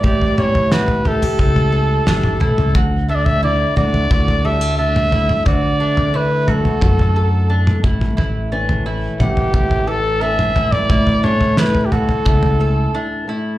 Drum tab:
SD |----o-------o---|----------------|----------------|----------------|
T2 |--o----------o-o|------o------o-o|------o------o-o|------o------o-o|
FT |oo-o-ooooo--o-o-|o--o--oooo----o-|o--o--oooo----o-|o--o--oooo----o-|
BD |o-------o-------|o-------o-------|o-------o-----o-|--------o-------|

SD |----o-----------|
T2 |--o-------------|
FT |oo-o-ooooo------|
BD |o-------o-------|